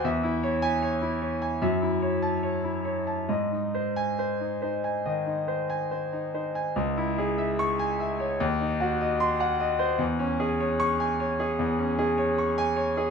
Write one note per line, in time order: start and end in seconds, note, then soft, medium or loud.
0.04 1.57 E2 medium
0.04 0.36 E5 medium
0.23 0.55 E4 medium
0.43 0.74 C#5 medium
0.62 0.94 G#5 medium
0.82 1.13 C#5 medium
1.02 1.33 E4 soft
1.22 1.53 C#5 soft
1.42 1.61 G#5 soft
1.62 3.25 F#2 medium
1.62 1.93 E5 medium
1.82 2.14 E4 soft
2.02 2.34 C#5 soft
2.22 2.55 A5 medium
2.43 2.76 C#5 soft
2.64 2.98 E4 soft
2.85 3.19 C#5 soft
3.07 3.28 A5 soft
3.29 5.01 G#2 soft
3.29 3.64 D#5 soft
3.52 3.87 D#4 soft
3.74 4.09 C5 soft
3.96 4.31 G#5 medium
4.19 4.53 C5 soft
4.40 4.61 D#4 soft
4.62 4.96 D#4 soft
4.62 4.96 C5 soft
4.84 5.18 G#5 soft
5.06 5.39 D#3 soft
5.06 5.39 D#5 soft
5.26 5.60 D#4 soft
5.48 5.82 C5 soft
5.70 6.03 G#5 soft
5.91 6.25 C5 soft
6.13 6.33 D#4 soft
6.34 6.68 D#4 soft
6.34 6.68 C5 soft
6.55 6.76 G#5 soft
6.76 8.37 C#2 medium
6.97 7.30 E4 medium
7.18 7.51 G#4 medium
7.38 7.71 E5 medium
7.59 7.92 C#6 medium
7.79 8.12 G#5 medium
8.00 8.33 E5 medium
8.20 8.40 C#5 medium
8.40 9.95 D#2 medium
8.61 8.93 D#4 soft
8.80 9.12 F#4 medium
9.01 9.32 D#5 medium
9.20 9.52 C6 medium
9.40 9.71 F#5 medium
9.60 9.91 D#5 medium
9.79 9.99 C5 medium
9.99 11.54 E2 medium
10.19 10.51 C#4 medium
10.40 10.71 G#4 medium
10.60 10.92 C#5 medium
10.80 11.11 C#6 medium
11.00 11.31 G#5 medium
11.20 11.51 C#5 medium
11.40 11.71 G#4 medium
11.59 13.10 E2 medium
11.79 12.10 C#4 medium
11.99 12.30 G#4 medium
12.18 12.50 C#5 medium
12.38 12.70 C#6 medium
12.58 12.89 G#5 medium
12.76 13.09 C#5 medium
12.97 13.10 G#4 medium